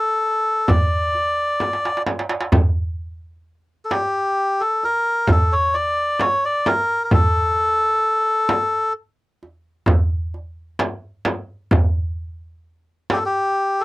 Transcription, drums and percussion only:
0, 0, Header, 1, 3, 480
1, 0, Start_track
1, 0, Tempo, 920245
1, 1318, Time_signature, 10, 3, 24, 8
1, 7222, End_track
2, 0, Start_track
2, 0, Title_t, "Darbuka"
2, 362, Note_on_c, 9, 64, 84
2, 415, Note_off_c, 9, 64, 0
2, 598, Note_on_c, 9, 62, 27
2, 651, Note_off_c, 9, 62, 0
2, 842, Note_on_c, 9, 63, 48
2, 894, Note_off_c, 9, 63, 0
2, 904, Note_on_c, 9, 62, 54
2, 956, Note_off_c, 9, 62, 0
2, 967, Note_on_c, 9, 63, 61
2, 1019, Note_off_c, 9, 63, 0
2, 1028, Note_on_c, 9, 62, 61
2, 1077, Note_on_c, 9, 63, 63
2, 1080, Note_off_c, 9, 62, 0
2, 1129, Note_off_c, 9, 63, 0
2, 1143, Note_on_c, 9, 62, 73
2, 1195, Note_off_c, 9, 62, 0
2, 1197, Note_on_c, 9, 63, 72
2, 1249, Note_off_c, 9, 63, 0
2, 1255, Note_on_c, 9, 62, 80
2, 1307, Note_off_c, 9, 62, 0
2, 1315, Note_on_c, 9, 64, 93
2, 1367, Note_off_c, 9, 64, 0
2, 2041, Note_on_c, 9, 63, 64
2, 2093, Note_off_c, 9, 63, 0
2, 2521, Note_on_c, 9, 62, 25
2, 2573, Note_off_c, 9, 62, 0
2, 2758, Note_on_c, 9, 64, 92
2, 2810, Note_off_c, 9, 64, 0
2, 2997, Note_on_c, 9, 62, 26
2, 3050, Note_off_c, 9, 62, 0
2, 3238, Note_on_c, 9, 63, 68
2, 3290, Note_off_c, 9, 63, 0
2, 3479, Note_on_c, 9, 63, 64
2, 3531, Note_off_c, 9, 63, 0
2, 3718, Note_on_c, 9, 64, 78
2, 3770, Note_off_c, 9, 64, 0
2, 4429, Note_on_c, 9, 63, 70
2, 4481, Note_off_c, 9, 63, 0
2, 4917, Note_on_c, 9, 62, 27
2, 4969, Note_off_c, 9, 62, 0
2, 5152, Note_on_c, 9, 64, 98
2, 5204, Note_off_c, 9, 64, 0
2, 5395, Note_on_c, 9, 62, 28
2, 5447, Note_off_c, 9, 62, 0
2, 5632, Note_on_c, 9, 63, 77
2, 5684, Note_off_c, 9, 63, 0
2, 5868, Note_on_c, 9, 63, 79
2, 5920, Note_off_c, 9, 63, 0
2, 6116, Note_on_c, 9, 64, 95
2, 6169, Note_off_c, 9, 64, 0
2, 6833, Note_on_c, 9, 63, 75
2, 6885, Note_off_c, 9, 63, 0
2, 7222, End_track
3, 0, Start_track
3, 0, Title_t, "Frame drum"
3, 355, Note_on_c, 9, 64, 84
3, 407, Note_off_c, 9, 64, 0
3, 836, Note_on_c, 9, 64, 66
3, 888, Note_off_c, 9, 64, 0
3, 1077, Note_on_c, 9, 64, 72
3, 1129, Note_off_c, 9, 64, 0
3, 1316, Note_on_c, 9, 64, 95
3, 1369, Note_off_c, 9, 64, 0
3, 2039, Note_on_c, 9, 64, 60
3, 2091, Note_off_c, 9, 64, 0
3, 2751, Note_on_c, 9, 64, 89
3, 2803, Note_off_c, 9, 64, 0
3, 3232, Note_on_c, 9, 64, 73
3, 3284, Note_off_c, 9, 64, 0
3, 3475, Note_on_c, 9, 64, 78
3, 3527, Note_off_c, 9, 64, 0
3, 3710, Note_on_c, 9, 64, 97
3, 3762, Note_off_c, 9, 64, 0
3, 4428, Note_on_c, 9, 64, 74
3, 4481, Note_off_c, 9, 64, 0
3, 5144, Note_on_c, 9, 64, 81
3, 5196, Note_off_c, 9, 64, 0
3, 5629, Note_on_c, 9, 64, 81
3, 5681, Note_off_c, 9, 64, 0
3, 5869, Note_on_c, 9, 64, 80
3, 5921, Note_off_c, 9, 64, 0
3, 6108, Note_on_c, 9, 64, 87
3, 6160, Note_off_c, 9, 64, 0
3, 6833, Note_on_c, 9, 64, 76
3, 6885, Note_off_c, 9, 64, 0
3, 7222, End_track
0, 0, End_of_file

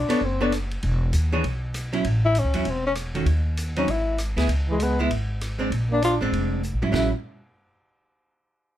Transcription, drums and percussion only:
0, 0, Header, 1, 2, 480
1, 0, Start_track
1, 0, Key_signature, 3, "major"
1, 0, Tempo, 305188
1, 1302, Time_signature, 4, 2, 24, 8
1, 13803, End_track
2, 0, Start_track
2, 0, Title_t, "Drums"
2, 153, Note_on_c, 9, 51, 65
2, 310, Note_off_c, 9, 51, 0
2, 821, Note_on_c, 9, 44, 44
2, 821, Note_on_c, 9, 51, 57
2, 825, Note_on_c, 9, 37, 51
2, 978, Note_off_c, 9, 44, 0
2, 978, Note_off_c, 9, 51, 0
2, 983, Note_off_c, 9, 37, 0
2, 1121, Note_on_c, 9, 51, 40
2, 1278, Note_off_c, 9, 51, 0
2, 1299, Note_on_c, 9, 51, 50
2, 1456, Note_off_c, 9, 51, 0
2, 1773, Note_on_c, 9, 44, 54
2, 1773, Note_on_c, 9, 51, 59
2, 1931, Note_off_c, 9, 44, 0
2, 1931, Note_off_c, 9, 51, 0
2, 2263, Note_on_c, 9, 51, 52
2, 2420, Note_off_c, 9, 51, 0
2, 2739, Note_on_c, 9, 44, 49
2, 2739, Note_on_c, 9, 51, 58
2, 2743, Note_on_c, 9, 37, 50
2, 2896, Note_off_c, 9, 44, 0
2, 2896, Note_off_c, 9, 51, 0
2, 2901, Note_off_c, 9, 37, 0
2, 3040, Note_on_c, 9, 51, 40
2, 3198, Note_off_c, 9, 51, 0
2, 3216, Note_on_c, 9, 51, 55
2, 3373, Note_off_c, 9, 51, 0
2, 3693, Note_on_c, 9, 44, 50
2, 3693, Note_on_c, 9, 51, 56
2, 3850, Note_off_c, 9, 44, 0
2, 3850, Note_off_c, 9, 51, 0
2, 3988, Note_on_c, 9, 51, 49
2, 4145, Note_off_c, 9, 51, 0
2, 4168, Note_on_c, 9, 51, 55
2, 4325, Note_off_c, 9, 51, 0
2, 4645, Note_on_c, 9, 44, 47
2, 4645, Note_on_c, 9, 51, 56
2, 4650, Note_on_c, 9, 37, 58
2, 4802, Note_off_c, 9, 44, 0
2, 4802, Note_off_c, 9, 51, 0
2, 4807, Note_off_c, 9, 37, 0
2, 4952, Note_on_c, 9, 51, 42
2, 5109, Note_off_c, 9, 51, 0
2, 5131, Note_on_c, 9, 51, 53
2, 5288, Note_off_c, 9, 51, 0
2, 5619, Note_on_c, 9, 44, 62
2, 5619, Note_on_c, 9, 51, 58
2, 5776, Note_off_c, 9, 44, 0
2, 5776, Note_off_c, 9, 51, 0
2, 5918, Note_on_c, 9, 51, 42
2, 6076, Note_off_c, 9, 51, 0
2, 6100, Note_on_c, 9, 51, 60
2, 6257, Note_off_c, 9, 51, 0
2, 6578, Note_on_c, 9, 44, 42
2, 6578, Note_on_c, 9, 51, 49
2, 6582, Note_on_c, 9, 37, 49
2, 6735, Note_off_c, 9, 44, 0
2, 6735, Note_off_c, 9, 51, 0
2, 6740, Note_off_c, 9, 37, 0
2, 6882, Note_on_c, 9, 51, 43
2, 6887, Note_on_c, 9, 38, 38
2, 7039, Note_off_c, 9, 51, 0
2, 7044, Note_off_c, 9, 38, 0
2, 7062, Note_on_c, 9, 51, 61
2, 7219, Note_off_c, 9, 51, 0
2, 7545, Note_on_c, 9, 44, 48
2, 7545, Note_on_c, 9, 51, 59
2, 7702, Note_off_c, 9, 44, 0
2, 7702, Note_off_c, 9, 51, 0
2, 8031, Note_on_c, 9, 51, 57
2, 8188, Note_off_c, 9, 51, 0
2, 8512, Note_on_c, 9, 44, 42
2, 8512, Note_on_c, 9, 51, 55
2, 8517, Note_on_c, 9, 37, 51
2, 8670, Note_off_c, 9, 44, 0
2, 8670, Note_off_c, 9, 51, 0
2, 8674, Note_off_c, 9, 37, 0
2, 8994, Note_on_c, 9, 51, 49
2, 9152, Note_off_c, 9, 51, 0
2, 9474, Note_on_c, 9, 44, 57
2, 9474, Note_on_c, 9, 51, 56
2, 9631, Note_off_c, 9, 44, 0
2, 9631, Note_off_c, 9, 51, 0
2, 9962, Note_on_c, 9, 51, 51
2, 10119, Note_off_c, 9, 51, 0
2, 10430, Note_on_c, 9, 44, 42
2, 10587, Note_off_c, 9, 44, 0
2, 10732, Note_on_c, 9, 48, 57
2, 10889, Note_off_c, 9, 48, 0
2, 10914, Note_on_c, 9, 36, 76
2, 10915, Note_on_c, 9, 38, 65
2, 10915, Note_on_c, 9, 49, 65
2, 11071, Note_off_c, 9, 36, 0
2, 11072, Note_off_c, 9, 38, 0
2, 11072, Note_off_c, 9, 49, 0
2, 13803, End_track
0, 0, End_of_file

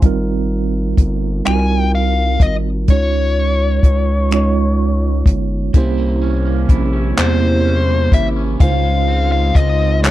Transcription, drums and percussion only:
0, 0, Header, 1, 2, 480
1, 0, Start_track
1, 0, Tempo, 952381
1, 15, Time_signature, 6, 3, 24, 8
1, 5095, End_track
2, 0, Start_track
2, 0, Title_t, "Drums"
2, 11, Note_on_c, 9, 42, 61
2, 12, Note_on_c, 9, 36, 89
2, 61, Note_off_c, 9, 42, 0
2, 63, Note_off_c, 9, 36, 0
2, 491, Note_on_c, 9, 36, 67
2, 494, Note_on_c, 9, 42, 55
2, 542, Note_off_c, 9, 36, 0
2, 544, Note_off_c, 9, 42, 0
2, 732, Note_on_c, 9, 42, 62
2, 739, Note_on_c, 9, 26, 95
2, 783, Note_off_c, 9, 42, 0
2, 790, Note_off_c, 9, 26, 0
2, 1209, Note_on_c, 9, 36, 78
2, 1214, Note_on_c, 9, 42, 73
2, 1259, Note_off_c, 9, 36, 0
2, 1264, Note_off_c, 9, 42, 0
2, 1451, Note_on_c, 9, 42, 63
2, 1453, Note_on_c, 9, 36, 89
2, 1501, Note_off_c, 9, 42, 0
2, 1503, Note_off_c, 9, 36, 0
2, 1930, Note_on_c, 9, 36, 75
2, 1935, Note_on_c, 9, 42, 57
2, 1981, Note_off_c, 9, 36, 0
2, 1985, Note_off_c, 9, 42, 0
2, 2172, Note_on_c, 9, 42, 59
2, 2179, Note_on_c, 9, 26, 92
2, 2223, Note_off_c, 9, 42, 0
2, 2230, Note_off_c, 9, 26, 0
2, 2649, Note_on_c, 9, 36, 76
2, 2656, Note_on_c, 9, 42, 73
2, 2700, Note_off_c, 9, 36, 0
2, 2706, Note_off_c, 9, 42, 0
2, 2893, Note_on_c, 9, 36, 94
2, 2893, Note_on_c, 9, 42, 64
2, 2943, Note_off_c, 9, 36, 0
2, 2943, Note_off_c, 9, 42, 0
2, 3372, Note_on_c, 9, 36, 75
2, 3374, Note_on_c, 9, 42, 57
2, 3422, Note_off_c, 9, 36, 0
2, 3425, Note_off_c, 9, 42, 0
2, 3614, Note_on_c, 9, 42, 62
2, 3622, Note_on_c, 9, 39, 97
2, 3665, Note_off_c, 9, 42, 0
2, 3672, Note_off_c, 9, 39, 0
2, 4092, Note_on_c, 9, 36, 78
2, 4098, Note_on_c, 9, 42, 73
2, 4142, Note_off_c, 9, 36, 0
2, 4148, Note_off_c, 9, 42, 0
2, 4335, Note_on_c, 9, 36, 97
2, 4336, Note_on_c, 9, 42, 66
2, 4386, Note_off_c, 9, 36, 0
2, 4387, Note_off_c, 9, 42, 0
2, 4814, Note_on_c, 9, 36, 75
2, 4819, Note_on_c, 9, 42, 56
2, 4864, Note_off_c, 9, 36, 0
2, 4869, Note_off_c, 9, 42, 0
2, 5058, Note_on_c, 9, 42, 66
2, 5065, Note_on_c, 9, 39, 106
2, 5095, Note_off_c, 9, 39, 0
2, 5095, Note_off_c, 9, 42, 0
2, 5095, End_track
0, 0, End_of_file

